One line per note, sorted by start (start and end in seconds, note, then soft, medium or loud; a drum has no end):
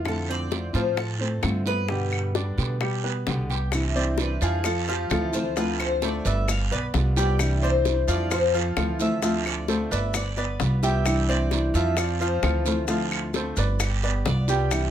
0.00 0.68 F2 medium
0.00 0.20 F4 medium
0.00 0.20 F5 medium
0.04 0.49 D3 medium
0.04 0.50 A3 medium
0.04 0.51 C4 medium
0.04 0.51 F4 medium
0.04 0.28 A4 medium
0.04 high bongo medium
0.04 long guiro medium
0.04 claves medium
0.29 0.66 C4 medium
0.29 0.67 C5 medium
0.29 0.74 D5 loud
0.50 0.73 D3 soft
0.50 0.74 A3 medium
0.50 0.73 C4 soft
0.50 0.72 F4 medium
0.50 high bongo medium
0.50 short guiro medium
0.73 1.39 A2 medium
0.73 1.13 F3 medium
0.73 0.96 A3 medium
0.73 0.96 C4 medium
0.73 0.96 F4 medium
0.73 1.13 F4 medium
0.73 0.98 C5 medium
0.73 short guiro medium
0.96 1.41 A4 medium
0.96 muted nylon-string guitar stroke medium
0.96 high bongo medium
0.96 long guiro medium
0.96 claves medium
1.19 1.41 A3 soft
1.19 1.42 C4 soft
1.19 1.58 C4 medium
1.19 1.42 F4 soft
1.19 1.58 C5 medium
1.41 2.52 G2 medium
1.41 1.64 D3 medium
1.41 1.65 A3 medium
1.41 1.65 C4 medium
1.41 1.65 F4 medium
1.41 high bongo medium
1.41 low bongo medium
1.41 short guiro medium
1.41 claves medium
1.66 1.89 A3 soft
1.66 1.85 B3 medium
1.66 1.89 C4 soft
1.66 1.88 F4 soft
1.66 3.24 B4 loud
1.66 1.86 B4 medium
1.66 short guiro medium
1.89 2.34 B2 medium
1.89 2.33 D3 medium
1.89 2.27 G3 medium
1.89 2.35 G3 medium
1.89 2.35 B3 medium
1.89 2.27 G4 medium
1.89 2.35 G4 medium
1.89 high bongo medium
1.89 long guiro medium
2.11 high bongo soft
2.11 claves medium
2.35 2.57 D3 soft
2.35 2.58 G3 soft
2.35 2.58 B3 soft
2.35 2.73 D4 medium
2.35 2.57 G4 soft
2.35 2.73 D5 medium
2.35 high bongo medium
2.35 short guiro medium
2.58 3.23 B2 medium
2.58 2.80 D3 medium
2.58 2.80 G3 medium
2.58 2.80 B3 medium
2.58 2.80 G4 medium
2.58 high bongo soft
2.58 short guiro medium
2.81 3.00 G3 medium
2.81 3.00 G4 medium
2.81 muted nylon-string guitar stroke medium
2.81 high bongo medium
2.81 long guiro medium
2.81 claves medium
3.04 3.27 G3 soft
3.04 3.42 B3 medium
3.04 3.27 B3 soft
3.04 3.26 G4 medium
3.04 3.42 B4 medium
3.27 4.35 C2 medium
3.27 3.49 B2 medium
3.27 3.49 D3 medium
3.27 3.50 G3 medium
3.27 3.50 B3 medium
3.27 3.49 G4 medium
3.27 high bongo medium
3.27 low bongo medium
3.27 short guiro medium
3.50 3.72 G3 soft
3.50 3.73 B3 soft
3.50 3.69 G4 medium
3.50 3.72 G4 soft
3.50 3.69 G5 medium
3.50 high bongo soft
3.50 short guiro medium
3.72 4.18 C3 medium
3.72 4.18 E3 medium
3.72 4.18 G3 medium
3.72 4.19 D4 medium
3.72 4.19 E4 medium
3.72 high bongo medium
3.72 long guiro medium
3.72 claves medium
3.72 maracas medium
3.95 4.33 C4 medium
3.95 4.33 C5 medium
3.95 4.34 D5 medium
3.95 maracas soft
4.18 4.64 E3 soft
4.18 4.64 G3 soft
4.18 4.65 D4 medium
4.18 4.65 E4 medium
4.18 4.42 B4 medium
4.18 high bongo medium
4.18 short guiro medium
4.18 maracas soft
4.41 5.07 F2 medium
4.41 4.61 F3 medium
4.41 4.61 F4 medium
4.41 4.65 G#4 medium
4.41 4.61 F5 medium
4.41 high bongo soft
4.41 short guiro medium
4.41 maracas medium
4.64 4.84 F3 medium
4.64 4.84 F4 medium
4.64 4.88 A4 medium
4.64 4.84 F5 medium
4.64 muted nylon-string guitar stroke medium
4.64 high bongo medium
4.64 long guiro medium
4.64 claves medium
4.64 maracas medium
4.88 5.07 F3 medium
4.88 5.07 F4 medium
4.88 5.11 G4 medium
4.88 5.07 F5 medium
4.88 high bongo soft
4.88 maracas soft
5.10 6.19 D2 medium
5.10 5.32 E3 medium
5.10 5.48 F3 medium
5.10 5.33 A3 medium
5.10 5.33 C4 medium
5.10 5.49 F4 medium
5.10 5.32 F4 medium
5.10 5.34 A4 medium
5.10 5.49 F5 medium
5.10 high bongo medium
5.10 low bongo medium
5.10 short guiro medium
5.10 claves medium
5.10 maracas soft
5.33 5.56 E3 medium
5.33 5.56 A3 medium
5.33 5.56 C4 medium
5.33 5.55 F4 medium
5.33 5.56 C5 loud
5.33 high bongo soft
5.33 short guiro medium
5.33 maracas medium
5.56 6.01 D3 medium
5.56 5.94 F3 medium
5.56 6.02 A3 medium
5.56 6.02 C4 medium
5.56 5.94 F4 medium
5.56 6.03 F4 medium
5.56 5.79 B4 medium
5.56 5.94 F5 medium
5.56 high bongo medium
5.56 long guiro medium
5.56 maracas medium
5.79 6.02 C5 loud
5.79 high bongo soft
5.79 claves medium
5.79 maracas soft
6.02 6.47 D3 soft
6.02 6.21 A3 medium
6.02 6.48 A3 medium
6.02 6.48 C4 soft
6.02 6.48 F4 medium
6.02 6.21 A4 medium
6.02 6.21 C5 medium
6.02 6.26 D5 medium
6.02 high bongo medium
6.02 short guiro medium
6.02 maracas soft
6.25 6.68 G1 loud
6.25 6.63 B4 medium
6.25 6.63 D5 medium
6.25 6.48 E5 medium
6.25 short guiro medium
6.25 maracas medium
6.48 6.72 F5 medium
6.48 muted nylon-string guitar stroke medium
6.48 high bongo medium
6.48 long guiro medium
6.48 claves medium
6.48 maracas medium
6.71 6.93 B1 medium
6.71 7.09 B3 medium
6.71 7.09 B4 medium
6.71 6.86 B4 medium
6.71 7.09 D5 medium
6.71 high bongo soft
6.71 maracas soft
6.94 8.02 C2 medium
6.94 7.16 G3 medium
6.94 7.17 B3 medium
6.94 7.15 F4 medium
6.94 high bongo medium
6.94 low bongo medium
6.94 short guiro medium
6.94 maracas soft
7.16 7.54 G3 medium
7.16 7.40 B3 soft
7.16 7.39 F4 medium
7.16 7.54 G4 medium
7.16 7.61 D5 medium
7.16 7.55 G5 medium
7.16 high bongo soft
7.16 short guiro medium
7.16 maracas medium
7.39 7.84 C3 medium
7.39 7.84 E3 medium
7.39 7.84 G3 medium
7.39 7.85 D4 medium
7.39 7.85 E4 medium
7.39 high bongo medium
7.39 long guiro medium
7.39 claves medium
7.39 maracas medium
7.62 8.00 C4 medium
7.62 8.00 C5 medium
7.62 8.06 C5 medium
7.62 8.00 D5 medium
7.62 maracas soft
7.85 8.29 E3 soft
7.85 8.30 G3 medium
7.85 8.31 D4 soft
7.85 8.31 E4 medium
7.85 high bongo medium
7.85 short guiro medium
7.85 maracas soft
8.08 8.73 F2 medium
8.08 8.27 F3 medium
8.08 8.27 F4 medium
8.08 8.32 D5 loud
8.08 8.27 F5 medium
8.08 high bongo soft
8.08 short guiro medium
8.08 maracas medium
8.30 8.50 F3 medium
8.30 8.50 F4 medium
8.30 8.55 C5 medium
8.30 8.50 F5 medium
8.30 muted nylon-string guitar stroke medium
8.30 high bongo medium
8.30 long guiro medium
8.30 claves medium
8.30 maracas medium
8.54 8.73 F3 medium
8.54 8.73 F4 medium
8.54 9.20 A4 medium
8.54 8.73 F5 medium
8.54 high bongo soft
8.54 maracas soft
8.76 9.85 D2 medium
8.76 8.99 E3 medium
8.76 9.15 F3 medium
8.76 8.99 A3 medium
8.76 8.99 C4 medium
8.76 9.15 F4 medium
8.76 8.98 F4 medium
8.76 9.15 F5 medium
8.76 high bongo medium
8.76 low bongo medium
8.76 short guiro medium
8.76 claves medium
8.76 maracas soft
9.00 9.21 E3 medium
9.00 9.21 A3 medium
9.00 9.22 C4 medium
9.00 9.22 F4 medium
9.00 9.43 E5 loud
9.00 high bongo soft
9.00 short guiro medium
9.00 maracas medium
9.22 9.67 D3 medium
9.22 9.60 F3 medium
9.22 9.67 A3 medium
9.22 9.68 C4 medium
9.22 9.60 F4 medium
9.22 9.68 F4 medium
9.22 9.61 F5 medium
9.22 high bongo medium
9.22 long guiro medium
9.22 maracas medium
9.45 9.89 D5 medium
9.45 high bongo soft
9.45 claves medium
9.45 maracas soft
9.68 10.13 D3 soft
9.68 9.87 A3 medium
9.68 10.14 A3 medium
9.68 10.14 C4 medium
9.68 10.14 F4 medium
9.68 9.88 A4 medium
9.68 9.88 C5 medium
9.68 high bongo medium
9.68 short guiro medium
9.68 maracas soft
9.91 10.56 G1 loud
9.91 10.29 B4 medium
9.91 10.29 D5 medium
9.91 10.15 E5 loud
9.91 short guiro medium
9.91 maracas medium
10.14 10.38 D5 medium
10.14 muted nylon-string guitar stroke medium
10.14 high bongo medium
10.14 long guiro medium
10.14 claves medium
10.14 maracas medium
10.37 10.75 B3 medium
10.37 10.75 B4 medium
10.37 11.02 B4 medium
10.37 10.75 D5 medium
10.37 high bongo soft
10.37 maracas soft
10.60 11.68 C2 medium
10.60 10.82 G3 medium
10.60 10.82 B3 medium
10.60 10.81 F4 medium
10.60 high bongo medium
10.60 low bongo medium
10.60 short guiro medium
10.60 maracas soft
10.83 11.20 G3 medium
10.83 11.06 B3 medium
10.83 11.05 F4 medium
10.83 11.21 G4 medium
10.83 11.25 E5 loud
10.83 11.21 G5 medium
10.83 high bongo soft
10.83 short guiro medium
10.83 maracas medium
11.05 11.50 C3 medium
11.05 11.50 E3 medium
11.05 11.50 G3 medium
11.05 11.51 D4 medium
11.05 11.51 E4 medium
11.05 high bongo medium
11.05 long guiro medium
11.05 claves medium
11.05 maracas medium
11.29 11.66 C4 medium
11.29 11.66 C5 medium
11.29 11.72 D5 loud
11.29 11.67 D5 medium
11.29 maracas soft
11.51 11.96 E3 medium
11.51 11.96 G3 soft
11.51 11.97 D4 medium
11.51 11.97 E4 medium
11.51 high bongo medium
11.51 short guiro medium
11.51 maracas soft
11.74 12.39 F2 loud
11.74 11.93 F3 medium
11.74 11.94 F4 medium
11.74 11.97 E5 loud
11.74 11.94 F5 medium
11.74 high bongo soft
11.74 short guiro medium
11.74 maracas medium
11.97 12.16 F3 medium
11.97 12.16 F4 medium
11.97 12.21 D5 medium
11.97 12.17 F5 medium
11.97 muted nylon-string guitar stroke medium
11.97 high bongo medium
11.97 long guiro medium
11.97 claves medium
11.97 maracas medium
12.20 12.39 F3 medium
12.20 12.39 F4 medium
12.20 12.86 C5 medium
12.20 12.40 F5 medium
12.20 high bongo soft
12.20 maracas soft
12.42 13.51 D2 medium
12.42 12.64 E3 medium
12.42 12.81 F3 medium
12.42 12.65 A3 medium
12.42 12.65 C4 medium
12.42 12.64 F4 medium
12.42 12.81 F4 medium
12.42 12.81 F5 medium
12.42 high bongo medium
12.42 low bongo medium
12.42 short guiro medium
12.42 claves medium
12.42 maracas soft
12.65 12.87 E3 medium
12.65 12.87 A3 medium
12.65 12.87 C4 medium
12.65 12.87 F4 medium
12.65 high bongo soft
12.65 short guiro medium
12.65 maracas medium
12.88 13.33 D3 medium
12.88 13.27 F3 medium
12.88 13.33 A3 medium
12.88 13.34 C4 medium
12.88 13.34 F4 medium
12.88 13.27 F4 medium
12.88 13.27 F5 medium
12.88 high bongo medium
12.88 long guiro medium
12.88 maracas medium
13.11 high bongo soft
13.11 claves medium
13.11 maracas soft
13.34 13.79 D3 soft
13.34 13.79 A3 medium
13.34 13.54 A3 medium
13.34 13.79 C4 medium
13.34 13.79 F4 medium
13.34 13.54 A4 medium
13.34 13.54 C5 medium
13.34 high bongo medium
13.34 short guiro medium
13.34 maracas soft
13.57 14.22 G1 loud
13.57 13.95 B4 medium
13.57 13.96 D5 medium
13.57 short guiro medium
13.57 maracas medium
13.80 muted nylon-string guitar stroke medium
13.80 high bongo medium
13.80 long guiro medium
13.80 claves medium
13.80 maracas loud
13.84 14.25 G4 medium
14.03 14.41 B3 medium
14.03 14.41 B4 medium
14.03 14.41 D5 medium
14.03 high bongo soft
14.03 maracas soft
14.25 14.91 C2 medium
14.25 14.48 G3 medium
14.25 14.48 B3 medium
14.25 14.46 F4 medium
14.25 14.69 D5 medium
14.25 high bongo medium
14.25 low bongo medium
14.25 short guiro medium
14.25 maracas soft
14.48 14.86 G3 medium
14.48 14.71 B3 medium
14.48 14.70 F4 medium
14.48 14.86 G4 medium
14.48 14.87 G5 medium
14.48 high bongo soft
14.48 short guiro medium
14.48 maracas medium
14.71 14.91 C3 medium
14.71 14.91 E3 medium
14.71 14.91 G3 medium
14.71 14.91 D4 medium
14.71 14.91 E4 medium
14.71 high bongo medium
14.71 long guiro medium
14.71 claves medium
14.71 maracas medium